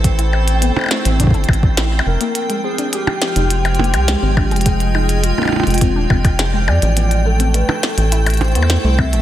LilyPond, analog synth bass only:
\new Staff \with { instrumentName = "Analog synth bass" } { \clef bass \time 4/4 \key a \minor \tempo 4 = 104 a,,4~ a,,16 r8 a,,8 g,,16 a,,4 f,,16 r16 | r4. r16 f,,4 c,8 aes,,8 f,,16~ | f,,4~ f,,16 r8 f,,8 ees,,16 f,,4 f,16 a,,16~ | a,,4~ a,,16 r8 a,,4 e,8 c,8 a,,16 | }